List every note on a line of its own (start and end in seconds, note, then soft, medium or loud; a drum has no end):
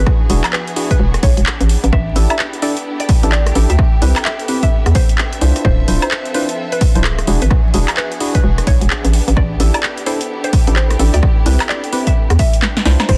0.00 1.67 B3 medium
0.00 4.54 D4 medium
0.00 5.61 D4 medium
0.00 1.67 F#4 medium
0.00 1.67 G#4 medium
0.00 0.11 B4 loud
0.00 0.59 E5 medium
0.06 1.69 G#4 medium
0.06 1.69 F#5 medium
0.06 kick loud
0.06 cross-stick medium
0.30 0.41 E1 medium
0.30 0.44 D4 medium
0.30 0.44 E4 medium
0.30 0.44 F#4 medium
0.30 0.44 G#4 loud
0.30 open hi-hat loud
0.44 clap medium
0.44 closed hi-hat medium
0.44 high woodblock medium
0.53 0.70 B4 medium
0.53 clap loud
0.68 closed hi-hat soft
0.76 0.96 D4 medium
0.76 0.96 E4 medium
0.76 0.96 F#4 medium
0.76 0.96 G#4 loud
0.76 open hi-hat medium
0.91 1.04 B4 medium
0.91 kick medium
0.91 closed hi-hat medium
0.99 1.18 E1 medium
1.14 cross-stick medium
1.14 closed hi-hat medium
1.23 1.34 B1 medium
1.23 1.40 C#5 medium
1.23 kick loud
1.23 open hi-hat loud
1.37 1.44 E1 medium
1.37 closed hi-hat medium
1.46 clap loud
1.60 1.77 A1 medium
1.60 closed hi-hat medium
1.69 3.77 B3 medium
1.69 3.77 E4 medium
1.69 5.61 G4 medium
1.69 open hi-hat medium
1.84 1.90 A1 loud
1.84 closed hi-hat medium
1.90 2.10 E5 loud
1.90 4.54 G5 medium
1.90 kick loud
1.90 cross-stick medium
2.06 4.54 A4 medium
2.16 2.27 A1 medium
2.16 2.35 D4 loud
2.16 2.35 E4 medium
2.16 2.35 G4 medium
2.16 2.35 A4 loud
2.16 open hi-hat loud
2.30 2.43 E5 medium
2.30 closed hi-hat medium
2.30 high woodblock medium
2.39 clap loud
2.53 closed hi-hat soft
2.62 2.76 D4 loud
2.62 2.76 E4 medium
2.62 2.76 G4 medium
2.62 2.76 A4 loud
2.62 2.79 D5 loud
2.62 open hi-hat medium
2.77 closed hi-hat medium
3.00 3.13 D5 medium
3.00 closed hi-hat medium
3.09 kick loud
3.09 open hi-hat loud
3.23 3.52 A1 medium
3.23 3.32 D4 loud
3.23 3.32 E4 medium
3.23 3.32 G4 medium
3.23 3.32 A4 loud
3.23 closed hi-hat medium
3.32 3.49 D5 loud
3.32 clap loud
3.46 cross-stick medium
3.46 closed hi-hat medium
3.55 3.66 A1 medium
3.55 3.69 D4 loud
3.55 3.69 E4 medium
3.55 3.69 G4 medium
3.55 3.69 A4 loud
3.55 open hi-hat medium
3.70 3.76 D2 medium
3.70 3.83 E5 medium
3.70 closed hi-hat medium
3.79 5.63 B3 medium
3.79 7.24 E5 medium
3.79 kick loud
3.79 cross-stick medium
4.02 4.13 C2 medium
4.02 4.16 C4 loud
4.02 4.16 E4 medium
4.02 4.16 G4 medium
4.02 4.16 B4 loud
4.02 open hi-hat loud
4.16 clap medium
4.16 closed hi-hat medium
4.16 high woodblock medium
4.22 6.31 B4 medium
4.22 4.42 E5 medium
4.22 clap loud
4.39 closed hi-hat soft
4.48 4.68 C4 medium
4.48 4.68 E4 medium
4.48 4.68 G4 medium
4.48 4.68 B4 loud
4.48 open hi-hat medium
4.63 4.76 E5 medium
4.63 8.03 E5 medium
4.63 kick medium
4.63 closed hi-hat medium
4.86 4.93 E2 medium
4.86 cross-stick medium
4.86 closed hi-hat medium
4.95 5.12 C5 medium
4.95 kick loud
4.95 open hi-hat loud
5.09 closed hi-hat medium
5.18 clap loud
5.33 closed hi-hat medium
5.41 5.52 C2 medium
5.41 5.86 D4 medium
5.41 5.86 E4 medium
5.41 5.86 F4 medium
5.41 5.86 C5 medium
5.41 open hi-hat medium
5.56 cross-stick soft
5.56 closed hi-hat medium
5.65 5.84 D1 loud
5.65 7.26 C4 medium
5.65 7.26 F4 medium
5.65 7.26 A4 medium
5.65 5.82 C5 loud
5.65 kick loud
5.65 cross-stick medium
5.88 5.99 D1 medium
5.88 6.07 D4 loud
5.88 6.07 E4 medium
5.88 6.07 F4 medium
5.88 6.07 C5 loud
5.88 open hi-hat loud
6.02 6.15 C5 loud
6.02 closed hi-hat medium
6.02 high woodblock medium
6.07 7.28 F3 medium
6.11 clap loud
6.26 closed hi-hat soft
6.34 6.48 D4 loud
6.34 6.48 E4 medium
6.34 6.48 F4 medium
6.34 6.51 B4 medium
6.34 6.48 C5 loud
6.34 open hi-hat medium
6.49 closed hi-hat medium
6.72 6.85 B4 loud
6.72 closed hi-hat medium
6.81 kick loud
6.81 open hi-hat loud
6.95 7.24 D1 medium
6.95 7.04 D4 loud
6.95 7.04 E4 medium
6.95 7.04 F4 medium
6.95 7.04 C5 loud
6.95 closed hi-hat medium
7.04 7.21 G#4 loud
7.04 clap loud
7.18 cross-stick medium
7.18 closed hi-hat medium
7.27 7.38 E1 medium
7.27 13.05 B3 medium
7.27 7.41 D4 loud
7.27 13.05 D4 medium
7.27 11.99 D4 medium
7.27 7.41 E4 medium
7.27 7.41 F#4 medium
7.27 9.12 F#4 medium
7.27 7.41 G#4 loud
7.27 9.12 G#4 medium
7.27 open hi-hat medium
7.42 7.49 G#1 medium
7.42 7.55 B4 loud
7.42 closed hi-hat medium
7.51 kick loud
7.51 cross-stick medium
7.74 7.85 E1 medium
7.74 7.88 D4 loud
7.74 7.88 E4 medium
7.74 7.88 F#4 medium
7.74 7.88 G#4 loud
7.74 open hi-hat loud
7.79 9.14 G#4 medium
7.88 clap medium
7.88 closed hi-hat medium
7.88 high woodblock medium
7.97 8.14 B4 loud
7.97 clap loud
8.12 closed hi-hat soft
8.20 8.40 D4 medium
8.20 8.40 E4 medium
8.20 8.40 F#4 medium
8.20 8.40 G#4 loud
8.20 open hi-hat medium
8.35 8.48 B4 loud
8.35 kick medium
8.35 closed hi-hat medium
8.44 8.63 E1 medium
8.58 cross-stick medium
8.58 closed hi-hat medium
8.67 8.78 B1 medium
8.67 8.84 C#5 medium
8.67 kick loud
8.67 open hi-hat loud
8.81 8.88 E1 medium
8.81 closed hi-hat medium
8.90 clap loud
9.05 9.21 A1 medium
9.05 closed hi-hat medium
9.13 13.05 E4 medium
9.13 13.05 G4 medium
9.13 open hi-hat medium
9.28 9.35 A1 loud
9.28 11.98 A4 medium
9.28 closed hi-hat medium
9.37 9.56 A1 loud
9.37 9.54 D5 loud
9.37 kick loud
9.37 cross-stick medium
9.60 9.71 A1 medium
9.60 9.79 D4 loud
9.60 9.79 E4 medium
9.60 9.79 G4 medium
9.60 9.79 A4 loud
9.60 open hi-hat loud
9.74 9.88 D5 medium
9.74 closed hi-hat medium
9.74 high woodblock medium
9.83 clap loud
9.94 11.98 G5 medium
9.94 closed hi-hat soft
10.06 10.21 D4 loud
10.06 10.21 E4 medium
10.06 10.21 G4 medium
10.06 10.21 A4 loud
10.06 10.23 C5 loud
10.06 open hi-hat medium
10.21 closed hi-hat medium
10.44 10.57 C5 loud
10.44 closed hi-hat medium
10.53 kick loud
10.53 open hi-hat loud
10.67 10.96 A1 medium
10.67 10.76 D4 loud
10.67 10.76 E4 medium
10.67 10.76 G4 medium
10.67 10.76 A4 loud
10.67 closed hi-hat medium
10.76 10.93 C5 loud
10.76 clap loud
10.90 cross-stick medium
10.90 closed hi-hat medium
10.99 11.10 A1 medium
10.99 11.14 D4 loud
10.99 11.14 E4 medium
10.99 11.14 G4 medium
10.99 11.14 A4 loud
10.99 open hi-hat loud
11.14 11.21 D2 medium
11.14 11.27 D5 loud
11.14 closed hi-hat medium
11.23 kick loud
11.23 cross-stick medium
11.43 11.57 C2 medium
11.43 11.60 C4 loud
11.43 11.60 E4 medium
11.43 11.60 G4 medium
11.43 13.18 B4 medium
11.43 11.60 B4 loud
11.43 open hi-hat loud
11.60 13.18 E5 medium
11.60 clap medium
11.60 closed hi-hat medium
11.60 high woodblock medium
11.69 11.86 D5 loud
11.69 clap loud
11.84 closed hi-hat soft
11.93 12.12 C4 medium
11.93 12.12 E4 medium
11.93 12.12 G4 medium
11.93 12.12 B4 loud
11.93 open hi-hat loud
12.07 12.20 E5 medium
12.07 kick medium
12.07 closed hi-hat medium
12.30 12.37 E2 medium
12.30 cross-stick medium
12.30 closed hi-hat medium
12.39 12.56 E5 loud
12.39 kick loud
12.39 open hi-hat loud
12.53 closed hi-hat medium
12.62 snare medium
12.62 clap loud
12.77 snare medium
12.77 closed hi-hat medium
12.86 12.96 C2 medium
12.86 13.18 D4 medium
12.86 13.18 E4 medium
12.86 13.18 F4 medium
12.86 13.18 C5 medium
12.86 snare medium
12.86 open hi-hat medium
13.00 snare medium
13.00 closed hi-hat medium
13.00 high woodblock medium
13.09 13.18 D1 loud
13.09 13.18 C4 medium
13.09 13.18 E4 medium
13.09 13.18 F4 medium
13.09 13.18 A4 medium
13.09 13.18 C5 loud
13.09 kick loud
13.09 cross-stick medium
13.09 closed hi-hat medium
13.09 crash loud